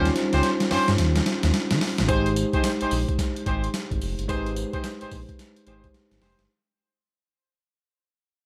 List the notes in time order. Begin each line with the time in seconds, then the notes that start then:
Already playing: D#2 G3 C#4 D#4 F4 C5
0.05 snare, closed hi-hat
0.16 snare, closed hi-hat
0.33 C#2 C#4 F4 G4 C5, snare, closed hi-hat
0.43 snare, closed hi-hat
0.60 snare, closed hi-hat
0.71 G2 C#4 F4 G4 C5, snare, open hi-hat
0.88 G2, snare, closed hi-hat
0.98 D#2, snare, closed hi-hat
1.16 snare, closed hi-hat
1.26 snare, closed hi-hat
1.43 D#2, snare, closed hi-hat
1.54 snare, closed hi-hat
1.71 D#3, snare, closed hi-hat
1.81 snare, open hi-hat
1.98 G1, snare, closed hi-hat
2.08 G#1 G#3 D#4 G4 G#4 C5, kick, closed hi-hat, tambourine
2.26 closed hi-hat
2.36 closed hi-hat, tambourine
2.53 D#4 G4 G#4 C5, kick, closed hi-hat
2.64 snare, closed hi-hat, tambourine
2.81 A#1 D#4 G4 G#4 C5, closed hi-hat
2.91 A#1, open hi-hat, tambourine
3.09 kick, closed hi-hat
3.19 kick, snare, closed hi-hat, tambourine
3.36 closed hi-hat
3.46 G#1 D#4 G4 G#4 C5, kick, closed hi-hat
3.64 closed hi-hat
3.74 snare, closed hi-hat, tambourine
3.91 G#1, kick, closed hi-hat
4.01 F1, open hi-hat, tambourine
4.19 G1, closed hi-hat
4.28 G#1 G#3 D#4 G4 G#4 B4 C5, kick, closed hi-hat, tambourine
4.37 C5
4.46 closed hi-hat
4.56 closed hi-hat, tambourine
4.73 D#4 G4 G#4 C5, kick, closed hi-hat
4.84 snare, closed hi-hat, tambourine
5.01 A#1 D#4 G4 G#4 C5, closed hi-hat
5.11 A#1, kick, open hi-hat, tambourine
5.29 kick, closed hi-hat
5.39 snare, closed hi-hat, tambourine
5.56 closed hi-hat
5.66 G#1 G#3 D#4 G4 G#4 C5, closed hi-hat
5.84 kick, closed hi-hat
5.94 snare, closed hi-hat
6.11 G#1, snare, closed hi-hat
6.21 F1 D#4 G4 G#4 C5, snare, open hi-hat
6.39 G1, snare, closed hi-hat